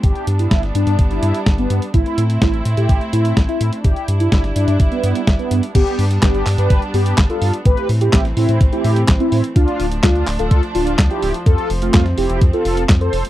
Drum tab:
CC |----------------|----------------|----------------|x---------------|
HH |xxxxxxxxxxxxxxxx|xxxxxxxxxxxxxxxx|xxxxxxxxxxxxxxxx|xxoxxxoxxxoxxxox|
CP |----------------|----------------|----------------|----x-x-----x---|
SD |----oo------o---|----o-------o---|----oo------o---|----o-------o---|
BD |o---o---o---o---|o---o---o---o---|o---o---o---o---|o---o---o---o---|

CC |----------------|----------------|----------------|
HH |xxoxxxoxxxoxxxox|xxoxxxoxxxoxxxox|xxoxxxoxxxoxxxox|
CP |----x-------x---|----x-x-----x---|----x-------x---|
SD |----oo------o---|----o-------o---|----oo------o---|
BD |o---o---o---o---|o---o---o---o---|o---o---o---o---|